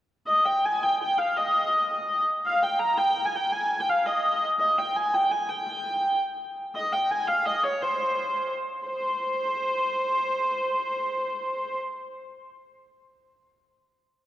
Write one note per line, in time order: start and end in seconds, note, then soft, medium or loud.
0.27 0.45 D#5 medium
0.45 0.65 G5 medium
0.65 0.82 G#5 medium
0.82 1.01 G5 medium
1.01 1.18 G5 medium
1.18 1.36 F5 medium
1.36 2.22 D#5 medium
2.46 2.63 F5 medium
2.63 2.79 G5 medium
2.79 2.98 A#5 medium
2.98 3.26 G5 medium
3.26 3.35 G#5 medium
3.35 3.52 G5 medium
3.52 3.80 G#5 medium
3.80 3.89 G5 medium
3.89 4.06 F5 medium
4.06 4.46 D#5 medium
4.59 4.78 D#5 medium
4.78 4.96 G5 medium
4.96 5.14 G#5 medium
5.14 5.31 G5 medium
5.31 5.49 G#5 medium
5.49 5.67 G5 medium
5.67 6.16 G5 medium
6.75 6.92 D#5 medium
6.92 7.11 G5 medium
7.11 7.27 G#5 medium
7.27 7.46 F5 medium
7.46 7.63 D#5 medium
7.63 7.82 C#5 medium
7.82 8.53 C5 medium
8.87 11.77 C5 medium